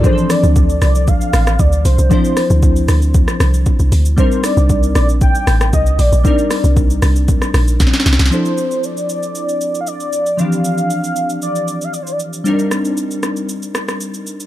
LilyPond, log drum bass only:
\new Staff \with { instrumentName = "Log drum bass" } { \clef bass \time 4/4 \key d \minor \tempo 4 = 116 r8. d,8. c,8. r16 a,,8 d,8 c,16 c,16 | r8. d,8. d,8. r16 c,8 r16 c,16 d,8 | r8. c,8. bes,,8. r16 a,,8 c,8 bes,,16 bes,,16 | r8. c,8. c,8. r16 bes,,8 bes,,16 r16 c,16 c,16 |
r1 | r1 | r1 | }